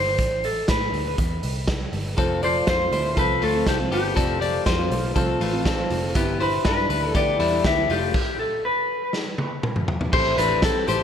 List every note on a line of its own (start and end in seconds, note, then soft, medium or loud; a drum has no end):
0.00 0.18 G1 medium
0.00 0.46 C5 loud
0.18 0.61 A1 medium
0.18 kick medium
0.18 closed hi-hat medium
0.44 0.67 A4 medium
0.44 open hi-hat medium
0.68 0.90 A2 medium
0.68 1.15 B4 medium
0.68 kick loud
0.68 snare loud
0.68 closed hi-hat medium
0.92 1.14 D2 medium
0.92 open hi-hat medium
1.18 1.39 E2 medium
1.18 kick medium
1.18 closed hi-hat medium
1.43 1.86 C2 medium
1.43 open hi-hat medium
1.68 kick loud
1.68 snare loud
1.68 closed hi-hat medium
1.93 2.14 G1 medium
1.93 open hi-hat medium
2.17 2.60 F1 loud
2.17 2.41 F3 medium
2.17 2.42 A3 medium
2.17 2.43 C4 medium
2.17 2.44 C4 medium
2.17 2.38 F4 loud
2.17 2.44 F4 medium
2.17 2.43 A4 loud
2.17 2.38 A4 medium
2.17 2.39 C5 loud
2.17 kick loud
2.17 closed hi-hat medium
2.42 2.80 F3 medium
2.42 2.80 A3 medium
2.42 2.80 C4 medium
2.42 2.63 F4 medium
2.42 2.67 F4 soft
2.42 2.63 A4 medium
2.42 2.64 C5 medium
2.42 2.67 C5 medium
2.42 2.67 D5 medium
2.42 open hi-hat medium
2.46 2.78 F4 medium
2.66 2.89 F2 loud
2.66 2.87 F4 medium
2.66 2.93 F4 medium
2.66 2.88 A4 medium
2.66 2.91 C5 medium
2.66 2.88 C5 medium
2.66 3.19 C5 medium
2.66 kick loud
2.66 snare loud
2.66 closed hi-hat medium
2.80 3.17 A3 soft
2.80 3.18 C4 soft
2.80 3.17 F4 soft
2.91 3.13 D2 medium
2.91 3.18 E4 soft
2.91 3.12 F4 medium
2.91 3.12 A4 medium
2.91 3.13 C5 medium
2.91 3.17 C5 medium
2.91 open hi-hat medium
3.15 3.38 C2 medium
3.15 3.54 F3 medium
3.15 3.54 A3 medium
3.15 3.42 C4 medium
3.15 3.53 C4 medium
3.15 3.37 F4 medium
3.15 3.37 A4 medium
3.15 3.42 A4 medium
3.15 3.38 C5 medium
3.15 kick medium
3.15 closed hi-hat medium
3.19 3.52 F4 medium
3.19 3.41 B4 medium
3.40 3.63 D2 medium
3.40 3.67 A3 medium
3.40 3.62 F4 medium
3.40 3.67 F4 medium
3.40 3.62 A4 medium
3.40 3.66 A4 medium
3.40 3.63 C5 medium
3.40 open hi-hat medium
3.54 3.79 F3 medium
3.54 3.78 A3 medium
3.54 3.78 C4 medium
3.54 3.77 F4 medium
3.66 3.88 C2 medium
3.66 3.92 C4 medium
3.66 3.75 G4 medium
3.66 3.87 A4 medium
3.66 3.91 A4 medium
3.66 kick loud
3.66 snare loud
3.66 closed hi-hat medium
3.78 4.14 F3 medium
3.78 4.15 A3 medium
3.78 4.16 C4 medium
3.78 4.16 F4 medium
3.90 4.13 G1 medium
3.90 4.17 B3 medium
3.90 4.12 F4 medium
3.90 4.16 G4 medium
3.90 4.89 G4 medium
3.90 4.12 A4 medium
3.90 4.12 B4 medium
3.90 open hi-hat medium
4.15 4.59 F1 medium
4.15 4.39 F3 medium
4.15 4.40 A3 medium
4.15 4.42 C4 medium
4.15 4.41 C4 medium
4.15 4.36 F4 medium
4.15 4.42 F4 medium
4.15 4.41 A4 medium
4.15 4.37 A4 medium
4.15 4.37 D5 loud
4.15 kick loud
4.15 closed hi-hat medium
4.40 4.78 F3 medium
4.40 4.79 A3 medium
4.40 4.77 C4 medium
4.40 4.62 F4 medium
4.40 4.66 F4 medium
4.40 4.76 F4 medium
4.40 4.62 A4 medium
4.40 4.63 C5 medium
4.40 4.66 D5 medium
4.40 open hi-hat medium
4.66 4.88 F2 loud
4.66 4.86 F4 medium
4.66 5.14 F4 medium
4.66 4.87 A4 medium
4.66 5.13 C5 medium
4.66 4.87 C5 medium
4.66 kick loud
4.66 snare loud
4.66 closed hi-hat medium
4.77 5.15 A3 soft
4.77 5.16 C4 soft
4.77 5.15 F4 medium
4.89 5.12 B1 medium
4.89 5.38 F4 medium
4.89 5.11 F4 medium
4.89 5.12 A4 medium
4.89 5.12 C5 medium
4.89 open hi-hat medium
5.15 5.37 C2 medium
5.15 5.53 F3 medium
5.15 5.52 A3 medium
5.15 5.41 C4 medium
5.15 5.52 C4 medium
5.15 5.36 F4 loud
5.15 5.51 F4 medium
5.15 5.41 A4 medium
5.15 5.37 A4 loud
5.15 5.37 C5 loud
5.15 kick medium
5.15 closed hi-hat medium
5.40 5.83 A1 medium
5.40 5.66 A3 medium
5.40 5.61 F4 medium
5.40 5.66 F4 medium
5.40 5.61 A4 medium
5.40 5.62 B4 medium
5.40 open hi-hat medium
5.52 5.78 F3 medium
5.52 5.77 A3 medium
5.52 5.77 C4 medium
5.52 5.76 F4 medium
5.65 6.13 C4 soft
5.65 5.86 F4 medium
5.65 6.12 A4 medium
5.65 5.86 A4 medium
5.65 5.87 C5 medium
5.65 kick loud
5.65 snare loud
5.65 closed hi-hat medium
5.77 6.13 F3 medium
5.77 6.15 A3 medium
5.77 6.15 C4 medium
5.77 6.15 F4 medium
5.90 6.11 F1 medium
5.90 6.11 F4 medium
5.90 6.11 A4 medium
5.90 6.12 C5 medium
5.90 open hi-hat medium
6.14 6.58 G1 loud
6.14 6.38 G3 medium
6.14 6.41 B3 medium
6.14 6.39 D4 medium
6.14 6.36 E4 loud
6.14 6.40 E4 medium
6.14 6.40 G4 medium
6.14 6.36 G4 loud
6.14 6.36 B4 loud
6.14 6.40 B4 medium
6.14 kick loud
6.14 closed hi-hat medium
6.39 6.77 G3 medium
6.39 6.77 D4 medium
6.39 6.60 E4 medium
6.39 6.65 E4 medium
6.39 6.77 E4 medium
6.39 6.61 G4 medium
6.39 6.61 B4 medium
6.39 6.75 B4 medium
6.39 6.65 B4 medium
6.39 6.65 C5 medium
6.39 open hi-hat medium
6.64 6.86 G2 loud
6.64 6.89 D4 medium
6.64 6.85 E4 medium
6.64 6.86 G4 medium
6.64 6.89 B4 medium
6.64 6.86 B4 medium
6.64 7.16 B4 medium
6.64 kick loud
6.64 snare loud
6.64 closed hi-hat medium
6.76 7.14 D4 soft
6.76 7.15 E4 soft
6.76 7.14 B4 medium
6.89 7.11 D2 medium
6.89 7.15 D4 medium
6.89 7.10 E4 medium
6.89 7.10 G4 medium
6.89 7.14 B4 medium
6.89 7.11 B4 medium
6.89 open hi-hat medium
7.14 7.36 D2 medium
7.14 7.52 G3 medium
7.14 7.40 B3 medium
7.14 7.51 D4 medium
7.14 7.35 E4 medium
7.14 7.50 E4 medium
7.14 7.35 G4 medium
7.14 7.39 G4 medium
7.14 7.36 A4 loud
7.14 7.50 B4 medium
7.14 7.66 D5 loud
7.14 kick loud
7.14 closed hi-hat medium
7.39 7.61 E2 medium
7.39 7.65 G3 medium
7.39 7.60 E4 medium
7.39 7.65 E4 medium
7.39 7.60 G4 medium
7.39 7.61 B4 medium
7.39 open hi-hat medium
7.51 7.77 G3 medium
7.51 7.77 D4 medium
7.51 7.76 E4 medium
7.51 7.76 B4 medium
7.63 7.86 D2 loud
7.63 7.89 B3 medium
7.63 7.84 E4 medium
7.63 7.85 G4 medium
7.63 7.90 G4 medium
7.63 7.85 B4 medium
7.63 7.91 E5 loud
7.63 kick loud
7.63 snare loud
7.63 closed hi-hat medium
7.77 8.15 G3 medium
7.77 8.15 D4 medium
7.77 8.14 E4 medium
7.77 8.14 B4 medium
7.89 8.10 F1 medium
7.89 8.15 A3 medium
7.89 8.10 E4 medium
7.89 8.15 F4 medium
7.89 8.10 G4 medium
7.89 8.39 G4 medium
7.89 8.11 D5 medium
7.89 open hi-hat medium
8.14 kick loud
8.14 crash medium
8.39 8.62 A4 medium
8.65 9.11 B4 medium
9.13 snare medium
9.38 high tom medium
9.63 mid tom medium
9.76 mid tom medium
9.88 floor tom medium
10.01 floor tom medium
10.12 10.34 A1 loud
10.12 10.33 C4 loud
10.12 10.33 E4 medium
10.12 10.38 E4 medium
10.12 10.34 G4 medium
10.12 10.34 A4 loud
10.12 10.38 C5 loud
10.12 kick loud
10.12 crash loud
10.37 10.69 A1 loud
10.37 10.58 C4 medium
10.37 10.63 D4 medium
10.37 10.58 E4 medium
10.37 10.58 G4 medium
10.37 10.63 B4 medium
10.37 10.61 B4 loud
10.37 10.59 B4 medium
10.37 hi-hat pedal medium
10.37 open hi-hat medium
10.61 10.82 C4 medium
10.61 10.88 C4 medium
10.61 10.82 E4 medium
10.61 10.87 A4 loud
10.61 10.88 A4 medium
10.61 kick loud
10.61 snare loud
10.61 hi-hat pedal medium
10.61 open hi-hat medium
10.86 11.03 A1 medium
10.86 11.03 C4 medium
10.86 11.03 E4 medium
10.86 11.03 G4 medium
10.86 11.03 A4 medium
10.86 11.03 C5 medium
10.86 hi-hat pedal medium
10.86 open hi-hat medium